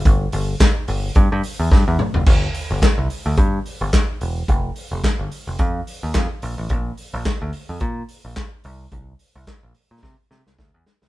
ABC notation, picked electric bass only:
X:1
M:4/4
L:1/16
Q:"Swing 16ths" 1/4=108
K:Gdor
V:1 name="Picked electric bass" clef=bass
G,,,2 G,,,2 z2 G,,,2 G,, G,, z E,, G,, E,, z ^F,,, | G,,,2 z G,,, z C,, z D,, G,,2 z G,,, z2 E,,,2 | F,,,2 z F,,, z G,,, z F,,, F,,2 z _E,, F,, z B,,, A,,, | B,,,2 z B,,, z D,, z F,, B,,2 z B,,, z2 C,,2 |
C,,2 z C,, z B,,, z B,, C, z C, C,, D,, E,, z C,, |]